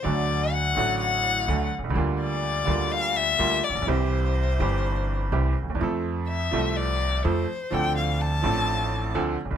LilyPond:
<<
  \new Staff \with { instrumentName = "Violin" } { \time 4/4 \key d \minor \tempo 4 = 125 d''4 fis''4 fis''4. r8 | r8 d''4. f''8 e''4 d''8 | c''2.~ c''8 r8 | r4 e''4 d''4 c''4 |
g''8 f''8 a''2 r4 | }
  \new Staff \with { instrumentName = "Upright piano" } { \clef bass \time 4/4 \key d \minor <d, d fis a fis'>4. <a,, a, d fis a fis'>4. <d, d fis a fis'>8 r32 b,,32 c,32 des,32 | <d, d g bes f'>4. <d, d g bes f'>4. <d, d g bes f'>8 r32 a,,32 bes,,32 b,,32 | <c, c e g c' g'>4. <g,, g, e g c' g'>4. <c, c e g c' g'>8 r32 d,32 ees,32 e,32 | <f, f a c' a'>4. <c, c f a c' a'>4. <f, f a c' a'>8 r8 |
<d, d f c' d' a'>4. <a,, a, f c' d' a'>4. <d, d f c' d' a'>8 r32 b,,32 c,32 r32 | }
  \new Staff \with { instrumentName = "Upright bass" } { \clef bass \time 4/4 \key d \minor d,4~ d,16. r32 a,,4~ a,,16. r32 d,16. r16 b,,32 c,32 des,32 | d,4~ d,16. r32 d,4~ d,16. r32 d,16. r16 a,,32 bes,,32 b,,32 | c,4~ c,16. r32 g,,4~ g,,16. r32 c,16. r16 d,32 ees,32 e,32 | f,4~ f,16. r32 c,4~ c,16. r32 f,16. r8 r32 |
d,4~ d,16. r32 a,,4~ a,,16. r32 d,16. r16 b,,32 c,32 r32 | }
>>